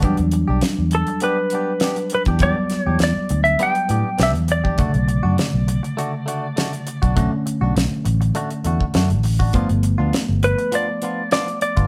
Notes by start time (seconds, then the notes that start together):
0.02 E2 F#3 G3 B3 D4 G4, kick, closed hi-hat
0.17 E2, muted clean electric guitar stroke, closed hi-hat
0.31 muted clean electric guitar stroke, closed hi-hat
0.48 B1 D4 G4
0.61 muted clean electric guitar stroke, snare, closed hi-hat
0.79 E2
0.91 A4, muted clean electric guitar stroke, closed hi-hat
1.07 muted clean electric guitar stroke, closed hi-hat
1.20 B3 D4 G4 B4, closed hi-hat
1.38 muted clean electric guitar stroke
1.50 B3 D4, closed hi-hat
1.55 G4
1.80 B3 D4 G4, snare, closed hi-hat
1.96 muted clean electric guitar stroke, closed hi-hat
2.10 muted clean electric guitar stroke, closed hi-hat
2.15 B4
2.25 E2 G4, kick, closed hi-hat
2.30 D4
2.39 F#3 G3 B3 D4, kick, closed hi-hat
2.43 B3 G4 D5
2.57 muted clean electric guitar stroke
2.70 muted clean electric guitar stroke, snare, closed hi-hat
2.82 C#5
2.87 E2 D4 G4
2.99 E2, snare, closed hi-hat
3.04 D5
3.17 muted fingered electric bass stroke
3.29 D2, muted clean electric guitar stroke, closed hi-hat
3.44 E5, muted clean electric guitar stroke, closed hi-hat
3.59 B3 D4 G4 G5, closed hi-hat
3.75 muted clean electric guitar stroke, closed hi-hat
3.88 A2 B3 D4 G4, closed hi-hat
4.18 B1 B3 D4 G4, snare, closed hi-hat
4.23 E5
4.35 E2, muted clean electric guitar stroke, closed hi-hat
4.48 D5, muted clean electric guitar stroke, closed hi-hat
4.64 D4 G4, kick
4.78 B1 C#3 D3 A3 D4 F#4, kick, closed hi-hat
4.93 B1, muted clean electric guitar stroke, closed hi-hat
5.08 muted clean electric guitar stroke, closed hi-hat
5.23 F#2 D4 F#4
5.37 muted clean electric guitar stroke, snare, closed hi-hat
5.54 B1
5.68 muted clean electric guitar stroke, closed hi-hat
5.83 muted clean electric guitar stroke, closed hi-hat
5.97 A3 D4 F#4, closed hi-hat
6.13 muted clean electric guitar stroke
6.26 A3 D4 F#4, closed hi-hat
6.56 A3 D4 F#4, snare, closed hi-hat
6.73 muted clean electric guitar stroke, closed hi-hat
6.87 muted clean electric guitar stroke, closed hi-hat
7.02 B1 D4 F#4, kick, closed hi-hat
7.15 D3 A3 C#4 D4 F#4, kick, closed hi-hat
7.32 muted clean electric guitar stroke
7.46 muted clean electric guitar stroke, closed hi-hat
7.61 B1 D4 F#4
7.75 B1, muted clean electric guitar stroke, snare, closed hi-hat
8.05 A1, muted clean electric guitar stroke, closed hi-hat
8.21 muted clean electric guitar stroke, closed hi-hat
8.35 A3 D4 F#4, closed hi-hat
8.50 muted clean electric guitar stroke, closed hi-hat
8.64 E2 A3 D4 F#4, closed hi-hat
8.81 kick
8.94 F#2 A3 D4 F#4, snare, closed hi-hat
9.10 A1, muted clean electric guitar stroke, closed hi-hat
9.23 muted clean electric guitar stroke, open hi-hat
9.39 D4 F#4, kick
9.53 G1 F3 A3 B3 D4 F4, kick, closed hi-hat
9.69 G1, muted clean electric guitar stroke, closed hi-hat
9.83 muted clean electric guitar stroke, closed hi-hat
9.98 D2 B3 D4 F4
10.13 muted clean electric guitar stroke, snare, closed hi-hat
10.29 G1
10.43 B4, muted clean electric guitar stroke, closed hi-hat
10.58 muted clean electric guitar stroke, closed hi-hat
10.72 F3 B3 D4 F4 D5, closed hi-hat
10.88 muted clean electric guitar stroke
11.02 F3 B3 D4 F4, closed hi-hat
11.31 F3 B3 D4 F4 D5, snare, closed hi-hat
11.48 muted clean electric guitar stroke, closed hi-hat
11.61 D5, muted clean electric guitar stroke, closed hi-hat
11.76 G1 B3 D4 F4, kick, closed hi-hat